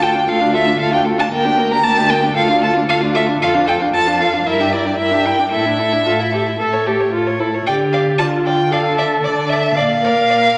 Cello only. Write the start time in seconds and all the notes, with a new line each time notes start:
Already playing: D2
0.28 D2
0.80 D2
1.33 D2
1.84 D2
2.36 D2
2.88 D2
3.40 F2
3.93 F2
4.46 G2
4.98 G2
5.52 A2
6.05 A2
6.59 A2
7.11 A2
7.66 D3
8.19 D3
8.70 D3
9.23 D3
9.76 A#2
10.28 A#2